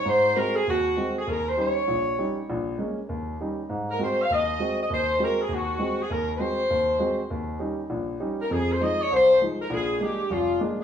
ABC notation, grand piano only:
X:1
M:4/4
L:1/8
Q:"Swing" 1/4=199
K:Ab
V:1 name="Grand piano" clef=bass
A,,2 [A,C_G] z E,,2 [A,CG] z | E,,2 [G,DE] z B,,,2 [G,DE] z | B,,,2 [A,B,D] z E,,2 [G,DE] z | A,,2 [A,C_G] z E,,2 [A,CG] z |
E,,2 [A,C_G] z E,,2 [A,CG] z | E,,2 [A,C_G] z E,,2 [A,CG] z | E,,2 [G,DE] z B,,,2 [G,DE] z | F,,2 [F,A,E] z C,,2 [F,A,E] z |
B,,,2 [A,B,=D] z F,,,2 [A,B,D] z |]